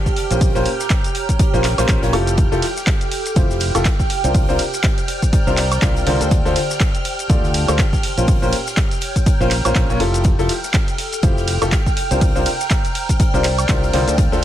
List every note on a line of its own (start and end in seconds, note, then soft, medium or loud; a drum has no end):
0.00 14.18 G4 medium
0.00 0.16 C5 medium
0.00 0.16 D5 medium
0.00 2.37 G5 medium
0.00 0.16 A5 medium
0.00 2.37 F6 medium
0.06 kick medium
0.06 snare soft
0.06 shaker soft
0.16 closed hi-hat medium
0.16 open hi-hat medium
0.31 0.52 A#1 loud
0.31 0.52 A#2 medium
0.31 0.52 C#4 medium
0.31 0.52 F4 medium
0.31 0.52 A#4 medium
0.31 0.52 C5 medium
0.31 closed hi-hat medium
0.31 shaker medium
0.36 2.38 A#5 loud
0.41 kick loud
0.41 closed hi-hat medium
0.41 open hi-hat medium
0.41 shaker medium
0.55 0.64 A#1 loud
0.55 0.66 A#2 medium
0.55 0.66 C#4 medium
0.55 0.66 F4 medium
0.55 0.66 A#4 medium
0.55 0.66 C5 loud
0.55 snare soft
0.55 shaker soft
0.59 2.38 C#5 medium
0.65 closed hi-hat medium
0.65 open hi-hat loud
0.80 snare medium
0.80 shaker medium
0.90 kick loud
0.90 snare loud
0.90 clap loud
0.90 closed hi-hat medium
0.90 shaker medium
1.04 closed hi-hat medium
1.04 shaker soft
1.15 closed hi-hat medium
1.15 open hi-hat loud
1.29 kick medium
1.29 closed hi-hat medium
1.29 closed hi-hat soft
1.29 shaker medium
1.39 kick loud
1.39 closed hi-hat medium
1.39 shaker medium
1.53 1.75 A#1 loud
1.53 1.65 A#2 medium
1.53 1.65 C#4 medium
1.53 1.65 F4 medium
1.53 1.65 A#4 medium
1.53 1.65 C5 loud
1.53 snare soft
1.53 shaker soft
1.64 snare loud
1.64 clap medium
1.64 closed hi-hat medium
1.64 open hi-hat loud
1.78 1.87 A#1 medium
1.78 1.86 A#2 loud
1.78 1.86 C#4 medium
1.78 1.86 F4 medium
1.78 1.86 A#4 medium
1.78 1.86 C5 loud
1.78 snare loud
1.78 closed hi-hat medium
1.78 high woodblock medium
1.78 shaker medium
1.88 2.00 A#1 medium
1.88 2.01 A#2 medium
1.88 2.01 C#4 medium
1.88 2.01 F4 medium
1.88 2.01 A#4 medium
1.88 2.01 C5 loud
1.88 kick loud
1.88 snare loud
1.88 clap loud
1.88 closed hi-hat medium
1.88 shaker medium
2.03 2.11 A#1 loud
2.03 2.12 A#2 medium
2.03 2.12 C#4 medium
2.03 2.12 F4 medium
2.03 2.12 A#4 medium
2.03 2.12 C#5 loud
2.03 snare loud
2.03 closed hi-hat medium
2.03 shaker soft
2.13 2.49 F1 loud
2.13 2.48 F3 loud
2.13 2.48 E4 medium
2.13 2.48 F4 medium
2.13 2.48 G4 medium
2.13 2.48 A4 loud
2.13 closed hi-hat medium
2.13 open hi-hat medium
2.13 high woodblock medium
2.27 closed hi-hat medium
2.27 shaker medium
2.37 10.23 G5 medium
2.37 10.23 F6 medium
2.37 kick loud
2.37 closed hi-hat medium
2.37 shaker medium
2.52 2.61 F1 loud
2.52 2.63 F3 loud
2.52 2.63 E4 medium
2.52 2.63 F4 medium
2.52 2.63 G4 medium
2.52 2.63 A4 loud
2.52 snare soft
2.52 shaker soft
2.61 4.10 A4 medium
2.61 snare soft
2.61 closed hi-hat medium
2.61 open hi-hat loud
2.61 ride medium
2.77 snare soft
2.77 shaker medium
2.86 kick loud
2.86 snare loud
2.86 clap loud
2.86 closed hi-hat medium
2.86 shaker medium
3.01 closed hi-hat medium
3.01 shaker soft
3.11 closed hi-hat medium
3.11 open hi-hat loud
3.11 ride medium
3.16 5.00 G5 medium
3.26 closed hi-hat medium
3.26 shaker medium
3.36 3.72 F1 loud
3.36 3.71 F3 medium
3.36 3.71 E4 medium
3.36 3.71 F4 medium
3.36 3.71 G4 medium
3.36 3.71 C5 medium
3.36 kick loud
3.36 closed hi-hat medium
3.36 shaker medium
3.51 snare soft
3.51 shaker soft
3.60 closed hi-hat medium
3.60 open hi-hat loud
3.60 ride medium
3.75 3.84 F1 loud
3.75 3.86 F3 medium
3.75 3.86 E4 medium
3.75 3.86 F4 medium
3.75 3.86 G4 medium
3.75 3.86 A4 loud
3.75 closed hi-hat medium
3.75 high woodblock medium
3.75 shaker medium
3.85 kick loud
3.85 snare loud
3.85 clap loud
3.85 closed hi-hat medium
3.85 shaker medium
3.99 kick medium
3.99 snare soft
3.99 shaker soft
4.10 closed hi-hat medium
4.10 open hi-hat medium
4.10 ride medium
4.24 4.46 C2 loud
4.24 4.45 C3 medium
4.24 4.45 D4 medium
4.24 4.45 F4 medium
4.24 4.45 A#4 medium
4.24 4.45 C5 medium
4.24 closed hi-hat medium
4.24 shaker medium
4.34 kick loud
4.34 closed hi-hat medium
4.34 open hi-hat medium
4.34 shaker medium
4.49 4.58 C2 medium
4.49 4.60 C3 loud
4.49 4.60 D4 medium
4.49 4.60 F4 medium
4.49 4.60 A#4 medium
4.49 4.60 C5 loud
4.49 snare soft
4.49 shaker soft
4.53 8.03 C5 medium
4.59 closed hi-hat medium
4.59 open hi-hat loud
4.59 ride medium
4.66 8.03 D5 medium
4.74 snare soft
4.74 shaker medium
4.83 kick loud
4.83 snare loud
4.83 clap loud
4.83 closed hi-hat loud
4.83 closed hi-hat medium
4.83 shaker medium
4.98 closed hi-hat medium
4.98 shaker soft
5.08 6.31 A#5 medium
5.08 closed hi-hat medium
5.08 open hi-hat loud
5.08 ride medium
5.22 kick medium
5.22 closed hi-hat medium
5.22 closed hi-hat soft
5.22 shaker medium
5.33 kick loud
5.33 closed hi-hat medium
5.33 shaker medium
5.47 5.80 C2 medium
5.47 5.58 C3 medium
5.47 5.58 D4 medium
5.47 5.58 F4 medium
5.47 5.58 A#4 medium
5.47 5.58 C5 loud
5.47 snare soft
5.47 shaker soft
5.57 clap medium
5.57 closed hi-hat medium
5.57 open hi-hat loud
5.57 ride medium
5.72 closed hi-hat medium
5.72 high woodblock medium
5.72 shaker medium
5.82 6.05 C2 medium
5.82 6.03 C3 medium
5.82 6.03 D4 medium
5.82 6.03 F4 medium
5.82 6.03 A#4 medium
5.82 6.03 C5 medium
5.82 kick loud
5.82 snare loud
5.82 clap loud
5.82 closed hi-hat medium
5.82 shaker medium
5.96 closed hi-hat soft
5.96 shaker soft
6.07 6.18 C2 loud
6.07 6.19 D3 loud
6.07 6.19 D4 medium
6.07 6.19 F4 medium
6.07 6.19 A#4 medium
6.07 6.19 C5 loud
6.07 closed hi-hat medium
6.07 open hi-hat medium
6.07 ride medium
6.21 6.43 D2 loud
6.21 6.42 D3 medium
6.21 6.42 D4 medium
6.21 6.42 F4 medium
6.21 6.42 A4 medium
6.21 6.42 C5 medium
6.21 closed hi-hat medium
6.21 shaker medium
6.31 kick loud
6.31 closed hi-hat medium
6.31 closed hi-hat loud
6.31 shaker medium
6.45 6.54 D2 loud
6.45 6.57 D3 loud
6.45 6.57 D4 medium
6.45 6.57 F4 medium
6.45 6.57 A4 medium
6.45 6.57 C5 loud
6.45 snare soft
6.45 shaker soft
6.56 snare medium
6.56 closed hi-hat medium
6.56 open hi-hat loud
6.56 ride medium
6.70 snare medium
6.70 shaker medium
6.80 kick loud
6.80 snare loud
6.80 clap loud
6.80 closed hi-hat medium
6.80 shaker medium
6.95 closed hi-hat medium
6.95 shaker soft
7.05 closed hi-hat medium
7.05 open hi-hat loud
7.05 ride medium
7.09 8.03 A5 medium
7.19 closed hi-hat medium
7.19 shaker medium
7.29 7.65 D2 loud
7.29 7.65 D3 medium
7.29 7.65 D4 medium
7.29 7.65 F4 medium
7.29 7.65 A4 medium
7.29 7.65 D5 medium
7.29 kick loud
7.29 closed hi-hat medium
7.29 shaker medium
7.43 snare soft
7.43 shaker soft
7.54 closed hi-hat medium
7.54 open hi-hat loud
7.54 ride medium
7.68 7.77 D2 loud
7.68 7.79 D3 medium
7.68 7.79 D4 medium
7.68 7.79 F4 medium
7.68 7.79 A4 medium
7.68 7.79 C5 loud
7.68 closed hi-hat medium
7.68 high woodblock medium
7.68 shaker medium
7.79 kick loud
7.79 snare loud
7.79 clap loud
7.79 closed hi-hat medium
7.79 shaker medium
7.93 kick medium
7.93 snare soft
7.93 shaker soft
8.03 closed hi-hat medium
8.03 open hi-hat loud
8.03 ride medium
8.17 8.39 A#1 loud
8.17 8.39 A#2 medium
8.17 8.39 C#4 medium
8.17 8.39 F4 medium
8.17 8.39 A#4 medium
8.17 8.39 C5 medium
8.17 closed hi-hat soft
8.17 shaker medium
8.27 kick loud
8.27 closed hi-hat medium
8.27 open hi-hat medium
8.27 shaker medium
8.40 8.51 A#1 loud
8.40 8.53 A#2 loud
8.40 8.53 C#4 medium
8.40 8.53 F4 medium
8.40 8.53 A#4 medium
8.40 8.53 C5 loud
8.40 10.25 C#5 medium
8.40 snare soft
8.40 shaker soft
8.53 closed hi-hat medium
8.53 open hi-hat loud
8.53 ride medium
8.67 snare soft
8.67 shaker medium
8.77 kick loud
8.77 snare loud
8.77 clap loud
8.77 closed hi-hat medium
8.77 closed hi-hat loud
8.77 shaker medium
8.91 closed hi-hat medium
8.91 shaker soft
9.01 10.25 A#5 medium
9.01 closed hi-hat medium
9.01 open hi-hat loud
9.01 ride medium
9.16 kick medium
9.16 closed hi-hat soft
9.16 closed hi-hat medium
9.16 shaker medium
9.26 kick loud
9.26 closed hi-hat medium
9.26 shaker medium
9.40 9.62 A#1 medium
9.40 9.52 A#2 medium
9.40 9.52 C#4 medium
9.40 9.52 F4 medium
9.40 9.52 A#4 medium
9.40 9.52 C5 loud
9.40 snare soft
9.40 shaker soft
9.51 clap medium
9.51 closed hi-hat medium
9.51 open hi-hat loud
9.51 ride medium
9.65 9.73 A#1 loud
9.65 9.73 A#2 loud
9.65 9.73 C#4 medium
9.65 9.73 F4 medium
9.65 9.73 A#4 medium
9.65 9.73 C5 loud
9.65 closed hi-hat medium
9.65 high woodblock medium
9.65 shaker medium
9.75 9.87 A#1 loud
9.75 9.88 C#4 medium
9.75 kick loud
9.75 snare loud
9.75 clap loud
9.75 closed hi-hat medium
9.75 shaker medium
9.90 9.98 A#1 loud
9.90 9.99 A#2 loud
9.90 9.99 C#4 medium
9.90 9.99 F4 medium
9.90 9.99 A#4 medium
9.90 9.99 C#5 loud
9.90 closed hi-hat soft
9.90 shaker soft
10.00 10.36 F1 loud
10.00 10.35 F3 loud
10.00 10.35 E4 medium
10.00 10.35 F4 medium
10.00 10.35 G4 medium
10.00 10.35 A4 loud
10.00 closed hi-hat medium
10.00 open hi-hat medium
10.00 ride medium
10.14 closed hi-hat medium
10.14 shaker medium
10.24 14.44 G5 medium
10.24 14.44 F6 medium
10.24 kick loud
10.24 closed hi-hat medium
10.24 shaker medium
10.39 10.48 F1 medium
10.39 10.50 F3 loud
10.39 10.50 E4 medium
10.39 10.50 F4 medium
10.39 10.50 G4 medium
10.39 10.50 A4 loud
10.39 snare medium
10.39 shaker soft
10.49 snare soft
10.49 closed hi-hat medium
10.49 open hi-hat loud
10.49 ride medium
10.55 11.97 A4 medium
10.64 snare medium
10.64 shaker medium
10.74 kick loud
10.74 snare loud
10.74 clap loud
10.74 closed hi-hat medium
10.74 shaker medium
10.88 closed hi-hat medium
10.88 shaker soft
10.98 closed hi-hat medium
10.98 open hi-hat loud
10.98 ride medium
11.03 12.80 G5 medium
11.13 closed hi-hat medium
11.13 shaker medium
11.23 11.59 F1 loud
11.23 11.58 F3 medium
11.23 11.58 E4 medium
11.23 11.58 F4 medium
11.23 11.58 G4 medium
11.23 11.58 C5 medium
11.23 kick loud
11.23 closed hi-hat loud
11.23 closed hi-hat medium
11.23 shaker medium
11.37 snare soft
11.37 shaker soft
11.48 closed hi-hat medium
11.48 open hi-hat loud
11.48 ride medium
11.62 11.71 F1 loud
11.62 11.73 F3 loud
11.62 11.73 E4 medium
11.62 11.73 F4 medium
11.62 11.73 G4 medium
11.62 11.73 A4 loud
11.62 closed hi-hat medium
11.62 high woodblock medium
11.62 shaker medium
11.72 kick loud
11.72 snare loud
11.72 clap loud
11.72 closed hi-hat loud
11.72 closed hi-hat medium
11.72 shaker medium
11.86 kick medium
11.86 snare soft
11.86 shaker soft
11.97 closed hi-hat medium
11.97 open hi-hat medium
11.97 ride medium
12.11 12.33 C2 loud
12.11 12.32 C3 medium
12.11 12.32 D4 medium
12.11 12.32 F4 medium
12.11 12.32 A#4 medium
12.11 12.32 C5 medium
12.11 closed hi-hat soft
12.11 shaker medium
12.17 14.18 A#5 medium
12.17 open hi-hat medium
12.21 kick loud
12.21 closed hi-hat medium
12.21 shaker medium
12.35 12.44 C2 loud
12.35 12.47 C3 loud
12.35 12.47 D4 medium
12.35 12.47 F4 medium
12.35 12.47 A#4 medium
12.35 12.47 C5 loud
12.35 snare soft
12.35 shaker soft
12.44 14.44 C5 medium
12.44 closed hi-hat medium
12.44 open hi-hat loud
12.44 ride medium
12.60 snare soft
12.60 shaker medium
12.70 kick loud
12.70 snare loud
12.70 clap loud
12.70 closed hi-hat medium
12.70 shaker medium
12.85 14.44 D5 loud
12.85 closed hi-hat medium
12.85 shaker soft
12.95 closed hi-hat medium
12.95 open hi-hat loud
12.95 ride medium
13.09 kick medium
13.09 closed hi-hat medium
13.09 closed hi-hat soft
13.09 shaker medium
13.20 kick loud
13.20 closed hi-hat medium
13.20 shaker medium
13.34 13.67 C2 medium
13.34 13.45 C3 medium
13.34 13.45 D4 medium
13.34 13.45 F4 medium
13.34 13.45 A#4 medium
13.34 13.45 C5 loud
13.34 snare soft
13.34 shaker soft
13.44 clap medium
13.44 closed hi-hat medium
13.44 open hi-hat loud
13.44 ride medium
13.58 closed hi-hat medium
13.58 high woodblock medium
13.58 shaker medium
13.69 13.91 C2 medium
13.69 13.90 C3 medium
13.69 13.90 D4 medium
13.69 13.90 F4 medium
13.69 13.90 A#4 medium
13.69 13.90 C5 medium
13.69 kick loud
13.69 snare loud
13.69 clap loud
13.69 closed hi-hat medium
13.69 shaker medium
13.84 closed hi-hat soft
13.84 shaker soft
13.93 14.05 C2 loud
13.93 14.06 D3 loud
13.93 14.06 D4 medium
13.93 14.06 F4 medium
13.93 14.06 A#4 medium
13.93 14.06 C5 loud
13.93 closed hi-hat medium
13.93 open hi-hat medium
13.93 ride medium
14.08 14.29 D2 medium
14.08 14.29 D3 medium
14.08 14.29 D4 medium
14.08 14.29 F4 medium
14.08 14.29 A4 medium
14.08 14.29 C5 medium
14.08 closed hi-hat medium
14.08 shaker medium
14.18 kick loud
14.18 closed hi-hat medium
14.18 closed hi-hat loud
14.18 shaker medium
14.32 14.41 D2 loud
14.32 14.43 D3 loud
14.32 14.43 D4 medium
14.32 14.43 F4 medium
14.32 14.43 A4 loud
14.32 14.43 C5 loud
14.32 snare soft
14.32 shaker soft
14.37 14.44 A5 medium